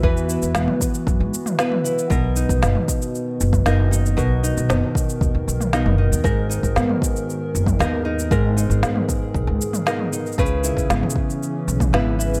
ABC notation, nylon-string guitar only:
X:1
M:4/4
L:1/8
Q:1/4=116
K:B
V:1 name="Nylon-string guitar"
[E,B,EB] E B,4 [B,EB] E | [B,,A] D B,4 [B,DA] D | [B,,A] D B,4 [B,DA] D | [G,,A] D B,4 [B,DA] D |
[G,,A] D B,4 [B,DA] D | [C,B] E B,4 [B,EB] E |]